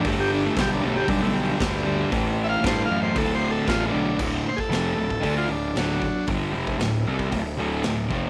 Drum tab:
CC |----------------|----------------|x---------------|----------------|
HH |o---o---o---o---|o---o---o---o---|----o---o---o---|o---o---o---o---|
SD |----o-------o---|----o-------o---|----o-------o---|----o-------o---|
BD |o---o---o---o---|o---o---o---o---|o--o---oo-----o-|o--o---oo-----o-|